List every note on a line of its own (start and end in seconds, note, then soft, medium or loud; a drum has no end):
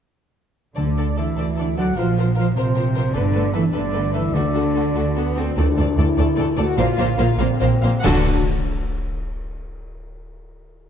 0.76 1.30 D2 soft
0.76 0.85 D3 soft
0.76 1.15 D3 soft
0.76 1.34 D3 soft
0.76 1.15 D4 medium
0.76 0.84 A4 soft
0.76 0.84 D5 soft
0.76 1.15 D5 soft
0.97 1.06 D3 soft
0.97 1.05 A4 soft
0.97 1.05 D5 soft
1.16 1.26 D3 soft
1.16 1.77 E3 medium
1.16 1.77 E4 medium
1.16 1.24 A4 soft
1.16 1.27 D5 soft
1.16 1.77 E5 medium
1.36 1.90 D2 soft
1.36 1.46 D3 soft
1.36 1.45 A4 soft
1.36 1.47 D5 soft
1.57 1.66 D3 soft
1.57 1.65 A4 soft
1.57 1.67 D5 soft
1.77 1.86 D3 soft
1.77 1.97 F#3 medium
1.77 1.97 F#4 medium
1.77 1.85 A4 soft
1.77 1.87 D5 soft
1.77 1.97 F#5 medium
1.96 2.49 A#1 medium
1.96 2.05 F3 soft
1.96 2.35 F3 medium
1.96 2.36 F4 medium
1.96 2.04 A#4 soft
1.96 2.36 F5 medium
2.00 2.07 C5 soft
2.17 2.25 F3 soft
2.17 2.25 A#4 soft
2.17 2.26 C5 soft
2.35 2.56 F3 medium
2.35 2.45 F3 soft
2.35 2.46 F4 medium
2.35 2.43 A#4 soft
2.35 2.46 F5 medium
2.40 2.47 C5 soft
2.56 3.07 A#1 medium
2.56 3.14 C3 medium
2.56 2.65 F3 soft
2.56 3.14 C4 medium
2.56 2.64 A#4 soft
2.56 3.13 C5 medium
2.56 2.65 C5 soft
2.75 2.84 F3 soft
2.75 2.83 A#4 soft
2.75 2.84 C5 soft
2.95 3.03 F3 soft
2.95 3.03 A#4 medium
2.95 3.04 C5 soft
3.14 3.67 G1 medium
3.14 3.54 D3 medium
3.14 3.23 A3 medium
3.14 3.55 D4 medium
3.14 3.22 A4 medium
3.14 3.23 B4 medium
3.14 3.54 D5 medium
3.33 3.43 A3 soft
3.33 3.41 A4 soft
3.33 3.41 B4 soft
3.53 3.62 E3 medium
3.53 3.63 A3 soft
3.53 3.64 E4 medium
3.53 3.61 A4 soft
3.53 3.61 B4 soft
3.53 3.62 E5 medium
3.72 4.28 G1 medium
3.72 4.13 D3 medium
3.72 3.82 A3 medium
3.72 4.14 D4 medium
3.72 3.80 A4 medium
3.72 3.81 B4 soft
3.72 4.13 D5 medium
3.92 4.02 A3 soft
3.92 4.02 A4 soft
3.92 4.00 B4 soft
4.13 4.35 E3 medium
4.13 4.22 A3 soft
4.13 4.35 E4 medium
4.13 4.22 A4 soft
4.13 4.21 B4 soft
4.13 4.34 E5 medium
4.34 4.89 D2 medium
4.34 5.37 D3 medium
4.34 4.92 D3 medium
4.34 4.43 A3 medium
4.34 5.36 D4 medium
4.34 4.43 F#4 medium
4.34 4.42 A4 soft
4.34 5.38 D5 medium
4.54 4.64 A3 soft
4.54 4.63 F#4 soft
4.54 4.62 A4 soft
4.75 4.84 A3 soft
4.75 4.84 F#4 soft
4.75 4.83 A4 soft
4.95 5.50 D2 medium
4.95 5.03 A3 medium
4.95 5.04 F#4 soft
4.95 5.03 A4 soft
5.16 5.37 B3 medium
5.16 5.24 F#4 soft
5.16 5.24 A4 soft
5.36 5.59 C4 medium
5.36 5.44 F#4 soft
5.36 5.45 A4 soft
5.56 5.65 D2 medium
5.56 5.66 D2 medium
5.56 5.66 A3 medium
5.56 5.95 D4 medium
5.56 5.65 A4 medium
5.56 5.66 D5 medium
5.56 tam-tam medium
5.56 cymbal swell soft
5.77 5.86 D2 medium
5.77 5.85 A3 medium
5.77 5.85 A4 medium
5.77 5.88 D5 medium
5.97 6.05 D2 medium
5.97 6.06 A3 medium
5.97 6.58 E4 medium
5.97 6.06 A4 medium
5.97 6.06 D5 medium
6.17 6.25 D2 medium
6.17 6.26 D2 medium
6.17 6.26 A3 medium
6.17 6.26 A4 medium
6.17 6.25 D5 medium
6.36 6.45 D2 medium
6.36 6.46 D2 medium
6.36 6.45 A3 medium
6.36 6.47 A4 medium
6.36 6.44 D5 medium
6.56 6.64 D2 medium
6.56 6.65 D2 medium
6.56 6.67 A3 medium
6.56 6.78 F#4 loud
6.56 6.65 A4 medium
6.56 6.64 D5 medium
6.77 6.85 A#1 medium
6.77 6.86 A#2 medium
6.77 6.86 A#3 medium
6.77 7.19 F4 loud
6.77 6.86 C5 medium
6.77 6.87 F5 medium
6.98 7.06 A#1 medium
6.98 7.07 A#2 medium
6.98 7.07 A#3 medium
6.98 7.07 C5 medium
6.98 7.06 F5 medium
7.17 7.25 A#1 medium
7.17 7.27 A#2 medium
7.17 7.27 A#3 medium
7.17 7.40 F4 loud
7.17 7.26 C5 medium
7.17 7.27 F5 medium
7.39 7.47 A#1 medium
7.39 7.48 A#2 medium
7.39 7.47 A#3 medium
7.39 8.03 C4 loud
7.39 7.47 C5 medium
7.39 7.47 F5 medium
7.60 7.68 A#1 medium
7.60 7.70 A#2 medium
7.60 7.69 A#3 medium
7.60 7.68 C5 medium
7.60 7.69 F5 medium
7.82 7.90 A#1 medium
7.82 7.91 A#2 medium
7.82 7.93 A#3 medium
7.82 7.91 C5 medium
7.82 7.91 F5 medium
8.02 8.28 D2 loud
8.02 8.24 D3 loud
8.02 8.29 D3 loud
8.02 8.22 D4 loud
8.02 8.29 F#4 medium
8.02 8.28 A4 medium
8.02 8.27 F#5 medium
8.02 concert bass drum medium
8.02 crash medium